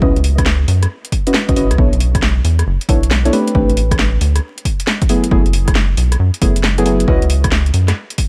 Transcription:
0.02 C#2 C#4 E4 F#4 B4 D#5, kick
0.16 C#2, closed hi-hat
0.24 open hi-hat
0.38 kick, cross-stick, closed hi-hat
0.46 snare
0.68 F#2, open hi-hat
0.83 cross-stick, closed hi-hat
1.05 closed hi-hat
1.12 kick, open hi-hat
1.27 C#4 E4 F#4 B4 D#5, closed hi-hat
1.34 snare
1.49 C#2 C#4 E4 F#4 B4 D#5, kick, closed hi-hat
1.56 G#1 C#4 E4 F#4 B4 D#5, open hi-hat
1.71 C#2, cross-stick, closed hi-hat
1.78 B1 B3 D4 E4 A4 C#5, kick
1.93 B1, closed hi-hat
2.00 open hi-hat
2.15 kick, cross-stick, closed hi-hat
2.23 snare
2.45 E2, open hi-hat
2.59 cross-stick, closed hi-hat
2.67 F#1
2.81 closed hi-hat
2.89 B1 B3 D4 E4 A4 C#5, kick, open hi-hat
3.03 closed hi-hat
3.11 snare
3.25 B3 D4 E4 A4 C#5, closed hi-hat
3.33 A3 C4 D4 G4 B4, open hi-hat
3.48 closed hi-hat
3.55 A1 A3 C4 D4 G4 B4, kick
3.70 A1, closed hi-hat
3.77 open hi-hat
3.91 kick, cross-stick, closed hi-hat
3.99 snare
4.21 D2, open hi-hat
4.36 cross-stick, closed hi-hat
4.58 closed hi-hat
4.65 kick, open hi-hat
4.80 closed hi-hat
4.87 snare
5.02 kick, closed hi-hat
5.09 F#3 A3 B3 E4 G#4, open hi-hat
5.24 closed hi-hat
5.31 F#1 F#3 A3 B3 E4 G#4, kick
5.46 F#1, closed hi-hat
5.53 open hi-hat
5.68 kick, cross-stick, closed hi-hat
5.75 snare
5.97 B1, open hi-hat
6.12 cross-stick, closed hi-hat
6.20 F#2
6.34 closed hi-hat
6.42 F#1 F#3 A3 B3 E4 G#4, kick, open hi-hat
6.56 closed hi-hat
6.64 snare
6.78 F#3 A3 B3 E4 G#4, closed hi-hat
6.86 F#3 A3 B3 E4 G#4, open hi-hat
7.00 closed hi-hat
7.08 C#2 C#4 E4 F#4 B4 D#5, kick
7.22 C#2, closed hi-hat
7.30 open hi-hat
7.44 kick, cross-stick, closed hi-hat
7.52 snare
7.66 closed hi-hat
7.74 F#2, open hi-hat
7.88 cross-stick, snare, closed hi-hat
8.10 closed hi-hat
8.18 kick, open hi-hat

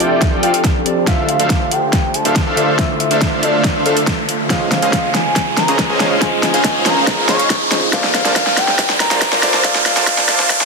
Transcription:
Already playing: F1 F3 C4 D4 F4 G4 A4 C5 D5 G5, riser
0.00 E5, closed hi-hat
0.22 kick, snare, closed hi-hat
0.43 F1 F3 F4 A4 D5 F5 G5, closed hi-hat
0.54 closed hi-hat
0.64 kick, snare, closed hi-hat
0.85 F3 C4 G4 A4 D5, closed hi-hat
1.05 D1 D3 A3 D4 F4 A4 C5 E5 F5, kick, snare, closed hi-hat
1.09 E5
1.29 F5, closed hi-hat
1.40 D1 D4 A4 C5 E5 F5, closed hi-hat
1.50 F5, kick, snare, closed hi-hat
1.71 G5, closed hi-hat
1.93 kick, snare, closed hi-hat
2.14 A5, closed hi-hat
2.25 D1 D4 A4 C5 E5 F5, closed hi-hat
2.36 kick, snare, closed hi-hat
2.47 D1 D4 A4 C5 E5 F5
2.56 D1 D3 A3 D4 F4 A4 C5 E5 F5, closed hi-hat
2.77 D3 A3 F4 C5 E5 E6, kick, snare, closed hi-hat
3.00 E5, closed hi-hat
3.11 D1 D4 A4 C5 E5 F5, closed hi-hat
3.21 E5, kick, snare, closed hi-hat
3.43 D5, closed hi-hat
3.64 kick, snare, closed hi-hat
3.86 D1 D4 A4 C5 E5 F5, closed hi-hat
3.97 closed hi-hat
4.07 kick, snare, closed hi-hat
4.29 closed hi-hat
4.48 C#2 C#3 G#3 C#4 D#4 F4 G#4 C5 D#5 F5, kick, snare, closed hi-hat
4.52 D#5
4.72 F5, snare, closed hi-hat
4.82 C#2 C#4 G#4 C5 D#5 F5, closed hi-hat
4.93 F5, kick, snare, closed hi-hat
5.15 G#5, snare, closed hi-hat
5.36 kick, snare, closed hi-hat
5.57 A#5, snare, closed hi-hat
5.68 C#2 C#4 G#4 C5 D#5 A#5, closed hi-hat
5.79 kick, snare, closed hi-hat
5.90 C#2 C#4 G#4 C5 D#5 G#5
5.99 C#2 C#3 G#3 C#4 F4 G#4 C5 D#5 F5, snare, closed hi-hat
6.20 C#3 G#3 F4 C5 G#5, kick, snare, closed hi-hat
6.24 D#5
6.43 G#5, snare, closed hi-hat
6.54 C#2 C#4 G#4 C5 D#5 F5, closed hi-hat
6.64 G#5, kick, snare, closed hi-hat
6.86 A#5, snare, closed hi-hat
7.07 kick, snare, closed hi-hat
7.29 C#2 C#4 G#4 C5 D#5 F5 C#6, snare, closed hi-hat
7.39 closed hi-hat
7.50 kick, snare, closed hi-hat
7.71 C#3 G#3 F4 C5 D#5, snare, closed hi-hat
7.91 A#1 A#2 A#3 D4 F4 A4 C5 D5 F5 A5, kick, snare, closed hi-hat
8.04 snare
8.14 F5, snare, closed hi-hat
8.25 A#1 A#3 F4 C5 D5 A5, snare, closed hi-hat
8.36 F5, kick, snare, closed hi-hat
8.47 snare
8.57 G5, snare, closed hi-hat
8.68 snare
8.79 kick, snare, closed hi-hat
8.90 snare
9.00 A#5, snare, closed hi-hat
9.11 A#1 A#3 F4 C5 D5 C6, snare, closed hi-hat
9.22 kick, snare, closed hi-hat
9.32 A#1 A#3 F4 C5 D5 A#5, snare
9.42 A#1 A#2 A#3 F4 A4 C5 D5 A5, snare, closed hi-hat
9.54 snare
9.62 A#2 A#3 A4 C5 F5, kick, snare, closed hi-hat
9.67 D5
9.75 snare
9.86 F5, snare, closed hi-hat
9.97 A#1 A#3 F4 C5 D5 A5, snare, closed hi-hat
10.07 F5, kick, snare, closed hi-hat
10.18 snare
10.29 F5, snare, closed hi-hat
10.40 snare
10.50 kick, snare, closed hi-hat
10.61 snare

